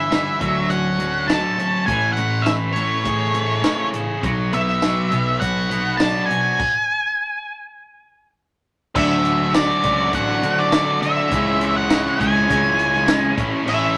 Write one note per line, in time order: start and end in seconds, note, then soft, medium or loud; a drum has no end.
0.00 0.28 G1 medium
0.00 0.73 E5 medium
0.10 0.39 G2 medium
0.10 0.38 D3 medium
0.10 0.40 E3 medium
0.10 0.39 G3 medium
0.10 snare loud
0.10 closed hi-hat medium
0.10 tambourine loud
0.40 1.42 D2 medium
0.40 0.68 D3 medium
0.40 0.68 F#3 medium
0.40 0.69 A3 medium
0.40 kick medium
0.40 closed hi-hat medium
0.70 0.97 D3 medium
0.70 0.97 F#3 medium
0.70 1.57 C#4 medium
0.70 1.25 F#5 medium
0.70 closed hi-hat medium
0.99 1.26 D3 medium
0.99 1.26 F#3 medium
0.99 closed hi-hat medium
1.28 1.56 D3 medium
1.28 1.57 F#3 medium
1.28 1.57 A3 medium
1.28 1.86 A5 loud
1.28 snare loud
1.28 closed hi-hat medium
1.28 tambourine loud
1.58 1.85 D3 medium
1.58 1.85 F#3 medium
1.58 1.88 C#4 medium
1.58 closed hi-hat medium
1.86 2.89 A1 loud
1.86 2.15 A2 medium
1.86 2.15 E3 medium
1.86 2.16 A3 medium
1.86 2.12 G#5 loud
1.86 kick loud
1.86 closed hi-hat loud
2.13 2.44 A2 medium
2.13 2.46 F#5 medium
2.17 2.44 E3 medium
2.17 2.75 A3 medium
2.17 closed hi-hat medium
2.42 2.51 E5 medium
2.42 closed hi-hat medium
2.42 tambourine medium
2.46 2.73 A2 medium
2.46 2.73 E3 medium
2.46 snare loud
2.73 3.03 A2 medium
2.73 3.03 E3 medium
2.73 3.04 A3 medium
2.73 3.88 C#5 medium
2.73 closed hi-hat medium
3.04 3.31 A2 medium
3.04 4.07 A2 loud
3.04 3.32 E3 medium
3.04 3.92 G#4 medium
3.04 kick medium
3.04 closed hi-hat medium
3.33 3.61 A2 medium
3.33 3.61 E3 medium
3.33 4.23 A3 medium
3.33 closed hi-hat medium
3.62 3.91 A2 medium
3.62 3.92 E3 medium
3.62 3.92 A3 medium
3.62 4.23 C#4 medium
3.62 snare loud
3.62 closed hi-hat medium
3.62 tambourine loud
3.93 4.20 A2 medium
3.93 4.20 E3 medium
3.93 4.23 G#4 medium
3.93 closed hi-hat medium
4.22 4.99 B1 loud
4.22 4.50 B2 medium
4.22 4.51 F#3 loud
4.22 4.51 B3 loud
4.22 kick loud
4.22 closed hi-hat medium
4.52 4.79 B2 medium
4.52 4.80 F#3 medium
4.52 5.10 B3 medium
4.52 5.45 E5 medium
4.52 closed hi-hat medium
4.68 snare soft
4.82 5.10 B2 medium
4.82 5.10 F#3 medium
4.82 5.11 B3 loud
4.82 snare medium
4.82 closed hi-hat medium
4.82 tambourine medium
5.11 6.13 B1 loud
5.11 5.38 B2 medium
5.11 5.38 F#3 medium
5.11 5.69 B3 medium
5.11 closed hi-hat medium
5.40 5.67 B2 medium
5.40 5.68 F#3 medium
5.40 6.28 F#4 medium
5.40 5.97 F#5 medium
5.40 kick medium
5.40 closed hi-hat medium
5.69 5.97 B2 medium
5.69 5.97 F#3 medium
5.69 6.59 B3 medium
5.69 closed hi-hat medium
5.97 6.28 B2 medium
5.97 6.28 F#3 medium
5.97 6.29 B3 medium
5.97 6.59 D4 medium
5.97 6.25 A5 loud
5.97 snare loud
5.97 closed hi-hat medium
5.97 tambourine loud
6.26 6.56 B2 medium
6.26 6.56 F#3 medium
6.26 6.59 F#4 medium
6.26 8.30 G#5 medium
6.30 closed hi-hat medium
6.59 kick loud
6.59 crash loud
8.95 9.71 D2 loud
8.95 9.52 D3 medium
8.95 9.54 F#3 loud
8.95 9.53 A3 medium
8.95 9.54 D4 loud
8.95 9.54 F#4 loud
8.95 9.55 E5 medium
8.95 kick loud
8.95 crash loud
9.25 closed hi-hat medium
9.53 9.82 D3 medium
9.53 9.82 F#3 medium
9.53 9.83 A3 medium
9.53 9.83 D4 medium
9.53 9.83 F#4 medium
9.53 10.09 D5 medium
9.53 snare loud
9.53 closed hi-hat medium
9.53 tambourine loud
9.70 snare soft
9.83 10.13 C#2 medium
9.83 10.11 D3 medium
9.83 10.11 F#3 medium
9.83 10.12 A3 medium
9.83 10.12 D4 medium
9.83 10.13 F#4 medium
9.83 kick medium
9.83 closed hi-hat medium
10.12 10.38 A1 loud
10.12 10.70 D3 medium
10.12 10.71 F#3 loud
10.12 10.71 A3 loud
10.12 10.72 D4 loud
10.12 10.72 F#4 loud
10.12 10.59 F#5 medium
10.12 kick medium
10.12 closed hi-hat loud
10.43 11.19 D3 medium
10.43 closed hi-hat medium
10.58 11.02 D5 medium
10.58 snare soft
10.72 10.99 D3 medium
10.72 10.99 F#3 medium
10.72 11.00 A3 medium
10.72 11.00 D4 loud
10.72 11.02 F#4 medium
10.72 snare loud
10.72 closed hi-hat medium
10.72 tambourine loud
11.00 11.28 D3 medium
11.00 11.28 F#3 medium
11.00 11.29 A3 medium
11.00 11.29 D4 medium
11.00 11.30 F#4 medium
11.00 11.78 E5 loud
11.00 closed hi-hat medium
11.30 12.07 C#2 loud
11.30 11.87 C#3 medium
11.30 11.91 E3 loud
11.30 11.88 G#3 medium
11.30 11.89 C#4 loud
11.30 11.89 E4 loud
11.30 kick loud
11.30 closed hi-hat loud
11.61 closed hi-hat medium
11.76 12.21 F#5 loud
11.88 12.16 C#3 medium
11.88 12.20 E3 medium
11.88 12.17 G#3 medium
11.88 12.18 C#4 medium
11.88 12.19 E4 medium
11.88 snare loud
11.88 closed hi-hat medium
11.88 tambourine loud
12.06 snare soft
12.17 12.45 C#2 loud
12.17 12.46 C#3 medium
12.17 12.48 E3 medium
12.17 12.47 G#3 medium
12.17 12.49 C#4 medium
12.17 12.48 E4 medium
12.17 13.34 G#5 loud
12.17 kick medium
12.17 closed hi-hat medium
12.47 13.25 C#2 loud
12.47 13.05 C#3 medium
12.47 13.07 E3 loud
12.47 13.05 G#3 medium
12.47 13.07 C#4 loud
12.47 13.06 E4 loud
12.47 kick medium
12.47 closed hi-hat loud
12.79 closed hi-hat medium
12.94 snare soft
13.06 13.35 C#3 medium
13.06 13.36 E3 loud
13.06 13.35 G#3 medium
13.06 13.36 C#4 medium
13.06 13.35 E4 medium
13.06 snare loud
13.06 closed hi-hat loud
13.06 tambourine loud
13.34 13.50 A1 loud
13.34 13.62 A2 medium
13.34 13.63 E3 loud
13.34 13.65 A3 loud
13.34 13.65 C#4 loud
13.34 13.65 E4 loud
13.34 kick loud
13.34 closed hi-hat medium
13.63 13.97 A1 loud
13.63 13.97 A2 medium
13.63 13.97 E3 loud
13.63 13.97 A3 loud
13.63 13.97 C#4 loud
13.63 13.97 E4 loud
13.68 13.97 E5 medium
13.68 crash loud